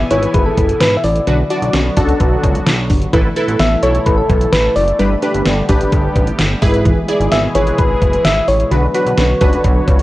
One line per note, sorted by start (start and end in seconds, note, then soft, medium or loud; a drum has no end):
0.00 1.25 B2 medium
0.00 1.25 E3 medium
0.00 1.25 B3 medium
0.00 1.25 E4 medium
0.00 1.25 G#5 medium
0.11 0.27 G#1 medium
0.11 0.70 E4 medium
0.11 0.26 E4 loud
0.11 0.70 G#4 medium
0.11 0.70 B4 medium
0.11 0.36 C#5 loud
0.11 closed hi-hat medium
0.23 closed hi-hat medium
0.34 0.51 G#1 loud
0.34 0.49 G#4 medium
0.34 0.47 B4 medium
0.34 kick medium
0.34 closed hi-hat medium
0.46 0.82 A4 medium
0.57 0.74 F#1 medium
0.57 0.72 B4 medium
0.57 kick medium
0.57 closed hi-hat medium
0.69 closed hi-hat medium
0.80 0.97 G#1 loud
0.80 0.98 B4 medium
0.80 snare loud
0.80 closed hi-hat medium
0.97 1.06 E5 medium
1.04 1.20 A1 medium
1.04 1.19 E4 medium
1.04 1.97 D5 loud
1.04 open hi-hat medium
1.16 closed hi-hat medium
1.27 1.43 B1 loud
1.27 3.11 D3 medium
1.27 1.42 D3 medium
1.27 3.11 F#3 medium
1.27 3.11 B3 medium
1.27 3.11 D4 medium
1.27 1.42 D4 medium
1.27 3.11 F#4 medium
1.27 1.42 F#4 medium
1.27 1.42 B4 medium
1.27 closed hi-hat medium
1.50 1.80 D4 medium
1.50 1.80 F#4 medium
1.50 1.80 D5 medium
1.50 closed hi-hat medium
1.62 1.70 B1 loud
1.62 closed hi-hat medium
1.73 1.90 B1 loud
1.73 1.88 C#4 medium
1.73 snare loud
1.73 closed hi-hat medium
1.97 2.13 C#2 loud
1.97 2.12 D4 loud
1.97 2.56 D4 medium
1.97 2.56 F#4 medium
1.97 2.56 A4 loud
1.97 kick loud
1.97 closed hi-hat medium
2.09 closed hi-hat medium
2.20 2.37 B1 loud
2.20 2.35 B4 medium
2.20 kick medium
2.20 closed hi-hat medium
2.43 2.60 C#2 medium
2.43 2.58 C#5 medium
2.43 kick medium
2.43 closed hi-hat medium
2.55 closed hi-hat medium
2.67 2.92 B1 medium
2.67 snare loud
2.67 closed hi-hat medium
2.90 3.06 G1 loud
2.90 3.05 D4 medium
2.90 kick medium
2.90 open hi-hat medium
3.02 closed hi-hat medium
3.13 3.30 A1 loud
3.13 4.97 B2 medium
3.13 4.97 E3 medium
3.13 3.28 E3 medium
3.13 6.59 A3 medium
3.13 3.28 E4 medium
3.13 4.97 E4 medium
3.13 3.28 A4 medium
3.13 4.97 A4 medium
3.13 3.28 B4 loud
3.13 kick loud
3.13 closed hi-hat medium
3.36 3.66 E4 medium
3.36 3.66 A4 medium
3.36 3.66 B4 loud
3.36 closed hi-hat medium
3.48 3.56 A1 medium
3.48 closed hi-hat medium
3.59 3.76 A1 loud
3.59 3.74 B3 medium
3.59 3.84 E5 loud
3.59 snare loud
3.59 closed hi-hat medium
3.83 3.99 B1 medium
3.83 3.98 E4 loud
3.83 4.42 E4 medium
3.83 4.42 A4 medium
3.83 4.07 C#5 loud
3.83 4.42 C#5 medium
3.83 closed hi-hat medium
3.95 closed hi-hat medium
4.06 4.23 A1 loud
4.06 4.21 A4 medium
4.06 4.19 B4 loud
4.06 kick medium
4.06 closed hi-hat medium
4.18 4.54 A4 medium
4.29 4.46 B1 medium
4.29 4.44 B4 medium
4.29 kick medium
4.29 closed hi-hat medium
4.41 closed hi-hat medium
4.52 4.69 A1 loud
4.52 4.75 B4 loud
4.52 snare loud
4.52 closed hi-hat medium
4.76 4.92 F#1 medium
4.76 4.91 E4 medium
4.76 5.65 D5 loud
4.76 open hi-hat medium
4.88 closed hi-hat medium
4.99 5.16 G1 loud
4.99 6.60 D3 medium
4.99 6.60 G3 medium
4.99 5.14 G3 medium
4.99 6.60 B3 medium
4.99 5.14 D4 medium
4.99 6.60 G4 medium
4.99 5.14 G4 medium
4.99 5.14 B4 medium
4.99 closed hi-hat medium
5.22 5.52 D4 medium
5.22 5.52 G4 medium
5.22 5.52 B4 medium
5.22 closed hi-hat medium
5.34 5.42 G1 loud
5.34 closed hi-hat medium
5.46 5.62 G1 loud
5.46 5.60 B3 medium
5.46 snare loud
5.46 closed hi-hat medium
5.69 5.85 A1 loud
5.69 6.28 D4 medium
5.69 5.84 G4 loud
5.69 6.28 G4 medium
5.69 6.28 B4 loud
5.69 kick loud
5.69 closed hi-hat medium
5.81 closed hi-hat medium
5.92 6.09 G1 loud
5.92 6.07 A4 medium
5.92 kick medium
5.92 closed hi-hat medium
6.16 6.32 A1 medium
6.16 6.30 B4 medium
6.16 kick medium
6.16 closed hi-hat medium
6.27 closed hi-hat medium
6.39 6.55 G1 medium
6.39 snare loud
6.39 closed hi-hat medium
6.62 6.95 G#1 loud
6.62 8.69 B2 medium
6.62 8.69 E3 medium
6.62 8.69 G#3 medium
6.62 8.69 E4 medium
6.62 6.99 E4 medium
6.62 6.77 E4 medium
6.62 6.99 G#4 medium
6.62 8.69 G#4 loud
6.62 6.99 B4 loud
6.62 kick medium
6.62 open hi-hat medium
6.74 closed hi-hat medium
6.85 7.00 E3 medium
6.85 kick loud
6.85 closed hi-hat medium
7.08 7.38 E4 loud
7.08 7.38 G#4 medium
7.08 7.38 D5 loud
7.08 closed hi-hat medium
7.20 7.28 G#1 loud
7.20 closed hi-hat medium
7.32 7.48 G#1 loud
7.32 7.46 B3 medium
7.32 7.42 E5 loud
7.32 snare loud
7.32 closed hi-hat medium
7.55 7.71 G#1 medium
7.55 7.70 E4 loud
7.55 8.14 E4 medium
7.55 8.14 G#4 medium
7.55 8.14 B4 medium
7.55 7.80 C#5 loud
7.55 closed hi-hat medium
7.67 closed hi-hat medium
7.78 7.95 G#1 loud
7.78 7.93 G#4 medium
7.78 8.26 B4 loud
7.78 kick medium
7.78 closed hi-hat medium
8.02 8.18 F#1 medium
8.02 8.16 B4 medium
8.02 kick medium
8.02 closed hi-hat medium
8.13 closed hi-hat medium
8.25 8.41 G#1 loud
8.25 8.50 E5 loud
8.25 snare loud
8.25 closed hi-hat medium
8.48 8.64 A1 medium
8.48 8.63 E4 medium
8.48 8.71 C#5 loud
8.48 open hi-hat medium
8.60 closed hi-hat medium
8.71 8.88 B1 loud
8.71 10.03 D3 medium
8.71 8.86 D3 medium
8.71 10.03 F#3 medium
8.71 10.03 B3 medium
8.71 8.86 D4 medium
8.71 10.03 F#4 medium
8.71 8.86 F#4 medium
8.71 8.86 B4 medium
8.71 10.03 B4 medium
8.71 10.03 C#5 medium
8.71 closed hi-hat medium
8.94 9.24 D4 medium
8.94 9.24 F#4 medium
8.94 9.24 B4 medium
8.94 closed hi-hat medium
9.06 9.14 B1 medium
9.06 closed hi-hat medium
9.18 9.34 B1 loud
9.18 9.33 C#4 medium
9.18 snare loud
9.18 closed hi-hat medium
9.41 9.58 C#2 loud
9.41 10.01 D4 medium
9.41 9.56 D4 loud
9.41 10.01 F#4 medium
9.41 10.01 B4 medium
9.41 kick loud
9.41 closed hi-hat medium
9.53 closed hi-hat medium
9.64 9.81 B1 loud
9.64 9.79 B4 medium
9.64 kick medium
9.64 closed hi-hat medium
9.88 10.03 C#2 medium
9.88 10.02 C#5 medium
9.88 kick medium
9.88 closed hi-hat medium
9.99 closed hi-hat medium